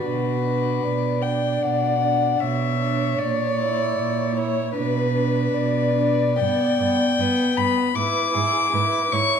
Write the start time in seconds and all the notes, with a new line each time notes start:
0.04 B2 D4 F#4 B4
0.44 D4
0.83 B2 D5
1.22 D4 G5
1.63 B2 F#5
2.02 D4
2.40 B2 C#5 E5
2.80 D4
3.19 A#2 D5
3.59 E4
3.98 A#2
4.36 E4 C#5
4.76 B2 D4 B4
5.15 D4
5.53 B2 D5
5.97 D4
6.40 G2 B3 G5
6.80 G2 B3
7.19 G2 B3 B4
7.57 G2 B3 B5
7.96 G#2 E4 B4 D6
8.34 G#2 E4 G#4
8.73 G#2 E4 B4
9.12 G#2 E4 C#5 C#6